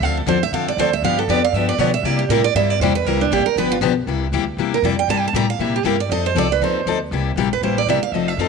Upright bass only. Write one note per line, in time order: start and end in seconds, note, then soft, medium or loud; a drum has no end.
0.01 0.25 D2 medium
0.26 0.51 E2 medium
0.52 0.76 F2 medium
0.77 1.02 D2 medium
1.02 1.27 G2 medium
1.28 1.52 F2 medium
1.53 1.77 G2 medium
1.78 2.03 B2 medium
2.03 2.28 C3 medium
2.29 2.54 A2 medium
2.54 2.79 G2 medium
2.80 3.04 E2 medium
3.05 3.30 C2 medium
3.31 3.44 A1 medium
3.45 muted upright bass stroke soft
3.56 3.80 G1 medium
3.81 4.06 B1 medium
4.07 4.31 C2 medium
4.32 4.56 D2 medium
4.57 4.81 E2 medium
4.82 5.07 F2 medium
5.08 5.33 G2 medium
5.33 5.58 A2 medium
5.59 5.84 A#2 medium
5.84 6.09 G2 medium
6.09 6.35 F2 medium
6.35 6.59 C2 medium
6.60 6.85 D#2 medium
6.86 7.10 D2 medium
7.11 7.35 C2 medium
7.36 7.61 A#1 medium
7.61 7.86 A1 medium
7.87 8.00 G1 medium
8.01 muted upright bass stroke soft
8.12 8.37 F1 medium
8.37 8.48 F2 medium